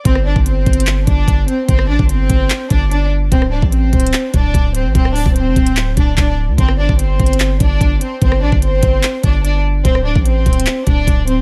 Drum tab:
HH |x-----------x-----x-x-x-x-----x-----x-----x-----|x-----------x-----x-----x-----x-----x-----------|x-----------x-----x-x-x-x-----x-----x-----x-----|x-----o-----x-----x--x--x-----x-----x-----------|
CP |------------------------x-----------------------|------------------------x-----------------------|------------------------x-----------------------|------------------------x-----------x-----------|
SD |---r--------------------------------------------|---r--------------------------------------------|---r--------------------------------------------|---r--------------------------------------------|
BD |o--------o--------o-----------o-----o-----------|o--------o--------o-----------o-----------------|o--------o--------o-----------o-----o-----------|o--------o--------o-----------o-----o-----------|

HH |x-----------x-----x-x-x-x-----x-----x-----x-----|x-----------x-----x-----x-----x-----x-----------|x-----------x-----x-x-x-x-----x-----x-----x-----|
CP |------------------------x-----------------------|------------------------x-----------------------|------------------------x-----------------------|
SD |---r--------------------------------------------|---r--------------------------------------------|---r--------------------------------------------|
BD |o--------o--------o-----------o-----o-----------|o--------o--------o-----------o-----------------|o--------o--------o-----------o-----o-----------|